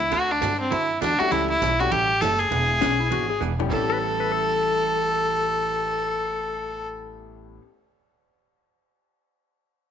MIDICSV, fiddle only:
0, 0, Header, 1, 2, 480
1, 0, Start_track
1, 0, Tempo, 299850
1, 184, Time_signature, 4, 2, 24, 8
1, 15862, End_track
2, 0, Start_track
2, 0, Title_t, "Fiddle"
2, 0, Program_c, 0, 110
2, 0, Note_on_c, 0, 64, 88
2, 208, Note_on_c, 0, 66, 97
2, 232, Note_off_c, 0, 64, 0
2, 504, Note_on_c, 0, 62, 90
2, 528, Note_off_c, 0, 66, 0
2, 950, Note_off_c, 0, 62, 0
2, 959, Note_on_c, 0, 60, 85
2, 1141, Note_on_c, 0, 64, 90
2, 1165, Note_off_c, 0, 60, 0
2, 1622, Note_off_c, 0, 64, 0
2, 1632, Note_on_c, 0, 62, 98
2, 1903, Note_on_c, 0, 66, 102
2, 1927, Note_off_c, 0, 62, 0
2, 2101, Note_on_c, 0, 64, 104
2, 2125, Note_off_c, 0, 66, 0
2, 2388, Note_off_c, 0, 64, 0
2, 2398, Note_on_c, 0, 64, 103
2, 2880, Note_on_c, 0, 66, 98
2, 2904, Note_off_c, 0, 64, 0
2, 3070, Note_on_c, 0, 67, 107
2, 3094, Note_off_c, 0, 66, 0
2, 3545, Note_on_c, 0, 69, 104
2, 3569, Note_off_c, 0, 67, 0
2, 3839, Note_on_c, 0, 68, 105
2, 3863, Note_off_c, 0, 69, 0
2, 5464, Note_off_c, 0, 68, 0
2, 5930, Note_on_c, 0, 69, 102
2, 10992, Note_off_c, 0, 69, 0
2, 15862, End_track
0, 0, End_of_file